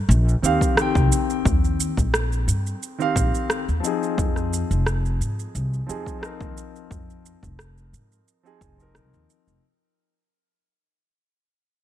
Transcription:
0.09 A#1, shaker
0.29 shaker
0.42 D#2 D#3 C4 G4 F5, shaker
0.61 kick, shaker
0.75 D#3 C4, cross-stick, shaker
0.79 G4 G5
0.95 C2, kick, shaker
1.12 shaker
1.30 shaker
1.45 D#2, kick, shaker
1.65 shaker
1.80 shaker
1.97 A#1, kick, shaker
2.14 cross-stick, shaker
2.32 shaker
2.48 G2, shaker
2.67 shaker
2.83 shaker
2.98 D#3 C4 G4 F5, shaker
3.16 A#1, kick, shaker
3.35 shaker
3.50 cross-stick, shaker
3.68 D#2, shaker
3.80 F3 C4
3.84 D#4 G#4, shaker
4.03 shaker
4.18 F2, kick, shaker
4.36 cross-stick, shaker
4.53 shaker
4.71 F1, shaker
4.87 cross-stick, shaker
5.06 shaker
5.21 G#2, shaker
5.39 shaker
5.55 C2, shaker
5.74 shaker
5.87 F2 F3 C4 D#4 G#4, shaker
6.06 kick, shaker
6.19 F3 C4, cross-stick
6.23 D#4 A#4, shaker
6.41 D#2, kick, shaker
6.57 shaker
6.76 shaker
6.91 F2, kick, shaker
7.10 shaker
7.26 shaker
7.43 F1, kick, shaker
7.59 cross-stick, shaker
7.78 shaker
7.93 G#2, shaker
8.12 shaker
8.28 shaker
8.43 F3 C4 D#4 G#4, shaker
8.61 F1, kick, shaker
8.76 F3 C4, shaker
8.80 D#4 A#4
8.95 C2, cross-stick, shaker
9.14 D#2, shaker
9.30 shaker
9.47 F1, shaker

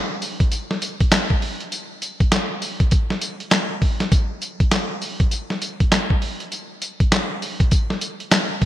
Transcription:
0.22 open hi-hat, tambourine
0.40 kick, closed hi-hat
0.52 closed hi-hat, tambourine
0.71 snare
0.82 closed hi-hat, tambourine
1.00 kick, closed hi-hat
1.12 snare, clap, closed hi-hat, tambourine
1.30 kick
1.42 open hi-hat
1.60 closed hi-hat
1.72 closed hi-hat, tambourine
2.02 closed hi-hat, tambourine
2.20 kick, closed hi-hat
2.32 snare, clap, closed hi-hat, tambourine
2.62 open hi-hat, tambourine
2.80 kick, closed hi-hat
2.91 kick, closed hi-hat, tambourine
3.10 snare
3.21 closed hi-hat, tambourine
3.40 closed hi-hat
3.51 snare, clap, closed hi-hat, tambourine
3.82 kick, open hi-hat
4.00 snare, closed hi-hat
4.12 kick, closed hi-hat, tambourine
4.42 closed hi-hat, tambourine
4.60 kick, closed hi-hat
4.71 snare, clap, closed hi-hat, tambourine
5.02 open hi-hat, tambourine
5.20 kick, closed hi-hat
5.31 closed hi-hat, tambourine
5.50 snare
5.62 closed hi-hat, tambourine
5.80 kick, closed hi-hat
5.92 snare, clap, closed hi-hat, tambourine
6.10 kick
6.22 open hi-hat
6.40 closed hi-hat
6.52 closed hi-hat, tambourine
6.82 closed hi-hat, tambourine
7.00 kick, closed hi-hat
7.12 snare, clap, closed hi-hat, tambourine
7.42 open hi-hat, tambourine
7.60 kick, closed hi-hat
7.71 kick, closed hi-hat, tambourine
7.90 snare
8.01 closed hi-hat, tambourine
8.20 closed hi-hat
8.32 snare, clap, closed hi-hat, tambourine
8.62 kick, open hi-hat

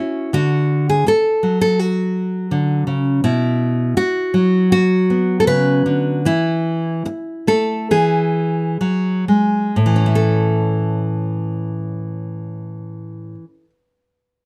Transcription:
Already playing: C#4 E4 F#4
0.33 D3 F#4
0.89 G#4
1.06 A4, muted nylon-string guitar stroke
1.43 F#3
1.61 A4
1.79 F#4
2.51 D3
2.87 C#3
3.24 B2 E4
3.97 F#4, muted nylon-string guitar stroke
4.34 F#3
4.72 F#4
5.10 B3
5.40 A4
5.47 C#3 B4
5.86 D3
6.25 E3 E4
7.05 muted nylon-string guitar stroke
7.47 A3 A4
7.91 E3 G#4
8.81 F#3
9.28 G#3
9.76 A2
9.86 E3
9.96 C#4
10.06 E4
10.15 A4

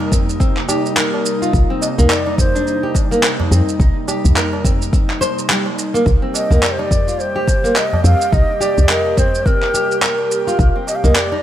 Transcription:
Already playing: C3 G3 A#3 D#4 A#4
0.00 tabla na, tabla tin
0.12 C4, kick, tabla ge, shaker
0.29 tabla tin, shaker
0.40 C4, kick, shaker
0.57 clap
0.69 G4, tabla na, shaker
0.86 shaker
0.97 A#4, clap, shaker
1.14 tabla na
1.26 shaker
1.42 F4, shaker
1.53 C2, kick, shaker
1.70 C4
1.81 D#5, tabla na, shaker
1.98 C2 A#3, tabla ge, shaker
2.10 D5, clap, shaker
2.26 D#4, tabla na, tabla tin
2.38 C5, kick, tabla ge, shaker
2.54 D4, tabla tin, shaker
2.67 shaker
2.83 G4
2.95 kick, tabla na, tabla tin, shaker
3.11 A#3, shaker
3.23 clap, shaker
3.40 tabla na, tabla ge
3.51 F2 C4, shaker
3.68 tabla tin, shaker
3.80 C2 D#4, kick, shaker
4.08 G4, tabla na, tabla tin, shaker
4.24 C2, tabla ge, shaker
4.36 A#4, clap, shaker
4.52 tabla na, tabla tin
4.64 C4, kick, tabla ge, shaker
4.81 tabla na, tabla tin, shaker
4.93 C4, kick, shaker
5.10 clap
5.21 C5, tabla na, shaker
5.39 shaker
5.49 G3, clap, shaker
5.66 tabla na
5.79 shaker
5.94 A#3, shaker
6.06 C2 G4, kick, shaker
6.22 C4
6.34 D#5, tabla na, shaker
6.50 C2 A#3, tabla ge, shaker
6.63 D5, clap, shaker
6.71 C5
6.79 D#4 D5, tabla na, tabla tin
6.91 kick, tabla ge, shaker
7.07 F4, tabla tin, shaker
7.20 C5, shaker
7.36 G4
7.48 kick, tabla na, tabla tin, shaker
7.64 A#3, shaker
7.76 D#5, clap, shaker
7.93 tabla na, tabla ge
8.04 F2 C4 F5, shaker
8.21 shaker
8.32 C2 D#4 D#5, kick, shaker
8.61 G4 D5, tabla na, shaker
8.78 C2, tabla ge, shaker
8.89 A#4 D#5, clap, shaker
9.06 tabla na, tabla tin
9.17 C4 C5, kick, tabla ge, shaker
9.34 tabla tin, shaker
9.46 C4 A#4, kick, shaker
9.62 clap
9.74 G4, tabla na, shaker
9.92 shaker
10.02 A#4, clap, shaker
10.19 tabla na
10.31 shaker
10.47 F4, shaker
10.59 C2, kick, shaker
10.76 C4
10.87 D#5, tabla na, shaker
10.96 F5
11.04 C2 A#3 D#5, tabla ge, shaker
11.15 D5, clap, shaker
11.32 D#4, tabla na, tabla tin

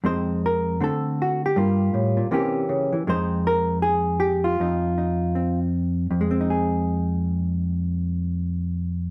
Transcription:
0.04 F2 G#3 C4 D#4 C5
0.46 A#4
0.81 D3 A3 C4 A4
1.22 F#4
1.46 G4
1.56 G2 G3 A#3 F4
1.94 A2
2.17 A#2
2.31 C3 E3 A#3 C#4 G4
2.69 C#3
2.93 E3
3.07 F2 G#3 C4 D#4 C5
3.47 A#4
3.82 G#4
4.20 G4
4.44 F4
4.60 F2 D#4
4.98 D#4
5.35 C4
6.11 F2
6.21 G#3
6.31 C4
6.41 D#4
6.50 G#4

